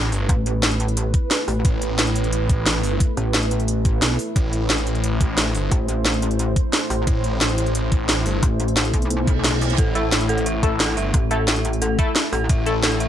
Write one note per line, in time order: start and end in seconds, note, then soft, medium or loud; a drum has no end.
0.00 0.11 A1 loud
0.00 13.08 A3 medium
0.00 13.08 E4 medium
0.00 4.34 B4 loud
0.12 0.28 G1 loud
0.12 open hi-hat medium
0.29 1.13 A1 medium
0.29 kick loud
0.29 closed hi-hat medium
0.46 closed hi-hat medium
0.63 snare loud
0.63 closed hi-hat medium
0.71 closed hi-hat soft
0.80 closed hi-hat medium
0.88 closed hi-hat soft
0.97 closed hi-hat loud
1.14 kick loud
1.14 closed hi-hat medium
1.31 snare loud
1.31 closed hi-hat medium
1.48 1.63 A1 medium
1.48 open hi-hat medium
1.65 1.97 A1 loud
1.65 kick loud
1.65 closed hi-hat loud
1.82 closed hi-hat medium
1.99 2.82 A1 loud
1.99 snare loud
1.99 closed hi-hat loud
2.07 closed hi-hat soft
2.16 closed hi-hat medium
2.24 closed hi-hat soft
2.33 closed hi-hat medium
2.49 kick loud
2.49 closed hi-hat medium
2.66 snare loud
2.66 closed hi-hat medium
2.83 2.99 G1 loud
2.83 open hi-hat medium
3.00 kick loud
3.00 closed hi-hat medium
3.17 4.01 A1 loud
3.17 closed hi-hat medium
3.34 snare loud
3.34 closed hi-hat medium
3.43 closed hi-hat soft
3.51 closed hi-hat medium
3.60 closed hi-hat soft
3.68 closed hi-hat medium
3.85 kick loud
3.85 closed hi-hat medium
4.02 4.18 B1 medium
4.02 snare loud
4.02 closed hi-hat medium
4.19 open hi-hat medium
4.36 4.68 A1 loud
4.36 9.76 C5 medium
4.36 kick loud
4.36 closed hi-hat medium
4.53 closed hi-hat medium
4.70 5.53 A1 medium
4.70 snare loud
4.70 closed hi-hat medium
4.78 closed hi-hat soft
4.87 closed hi-hat medium
4.95 closed hi-hat soft
5.04 closed hi-hat medium
5.21 kick loud
5.21 closed hi-hat medium
5.38 snare loud
5.38 closed hi-hat medium
5.55 5.70 G1 loud
5.55 open hi-hat medium
5.71 6.55 A1 loud
5.71 kick loud
5.71 closed hi-hat medium
5.88 closed hi-hat medium
6.05 snare loud
6.05 closed hi-hat medium
6.14 closed hi-hat soft
6.22 closed hi-hat medium
6.31 closed hi-hat soft
6.39 closed hi-hat medium
6.56 kick loud
6.56 closed hi-hat medium
6.73 snare loud
6.73 closed hi-hat medium
6.90 7.06 A1 medium
6.90 open hi-hat medium
7.07 7.40 A1 loud
7.07 kick loud
7.07 closed hi-hat medium
7.24 closed hi-hat medium
7.41 8.24 A1 loud
7.41 snare loud
7.41 closed hi-hat medium
7.49 closed hi-hat soft
7.58 closed hi-hat medium
7.66 closed hi-hat soft
7.75 closed hi-hat medium
7.92 kick loud
7.92 closed hi-hat medium
8.09 snare loud
8.09 closed hi-hat medium
8.26 8.41 G1 loud
8.26 open hi-hat medium
8.43 8.92 A1 loud
8.43 kick loud
8.43 closed hi-hat loud
8.60 closed hi-hat medium
8.68 closed hi-hat soft
8.77 snare loud
8.77 closed hi-hat medium
8.85 closed hi-hat soft
8.94 9.77 B1 loud
8.94 kick medium
8.94 closed hi-hat medium
9.02 closed hi-hat soft
9.10 closed hi-hat loud
9.10 reverse cymbal medium
9.27 kick loud
9.27 closed hi-hat medium
9.44 snare loud
9.44 closed hi-hat medium
9.61 open hi-hat medium
9.70 closed hi-hat soft
9.78 10.11 A1 loud
9.78 13.08 A4 loud
9.78 9.87 A4 loud
9.78 kick loud
9.78 closed hi-hat loud
9.95 10.02 A3 medium
9.95 10.02 E4 medium
9.95 10.02 A4 loud
9.95 10.04 E5 medium
9.95 closed hi-hat medium
10.12 10.96 A1 medium
10.12 snare loud
10.12 closed hi-hat loud
10.21 closed hi-hat soft
10.29 10.38 A4 loud
10.29 closed hi-hat medium
10.38 closed hi-hat soft
10.46 10.55 E5 medium
10.46 closed hi-hat loud
10.63 10.74 A3 loud
10.63 10.74 E4 medium
10.63 10.74 A4 loud
10.63 kick loud
10.63 closed hi-hat medium
10.80 10.89 A4 loud
10.80 snare loud
10.80 closed hi-hat loud
10.97 11.13 G1 loud
10.97 11.06 E5 medium
10.97 open hi-hat medium
11.14 11.97 A1 loud
11.14 kick loud
11.14 closed hi-hat loud
11.31 11.37 A3 loud
11.31 11.37 E4 medium
11.31 11.37 A4 loud
11.31 11.40 A4 loud
11.31 closed hi-hat medium
11.48 11.57 E5 medium
11.48 snare loud
11.48 closed hi-hat loud
11.56 closed hi-hat soft
11.65 closed hi-hat medium
11.73 closed hi-hat soft
11.82 11.91 A4 loud
11.82 closed hi-hat loud
11.99 12.09 A3 loud
11.99 12.09 E4 medium
11.99 12.09 A4 loud
11.99 12.08 E5 medium
11.99 kick loud
11.99 closed hi-hat medium
12.16 snare loud
12.16 closed hi-hat loud
12.33 12.48 A1 medium
12.33 12.42 A4 loud
12.33 open hi-hat medium
12.49 12.82 A1 loud
12.49 12.59 E5 medium
12.49 kick loud
12.49 closed hi-hat loud
12.66 12.73 A3 loud
12.66 12.73 E4 medium
12.66 12.73 A4 loud
12.66 closed hi-hat medium
12.83 13.08 A1 loud
12.83 12.93 A4 loud
12.83 snare loud
12.83 closed hi-hat loud
12.92 closed hi-hat soft
13.00 13.08 E5 medium
13.00 closed hi-hat medium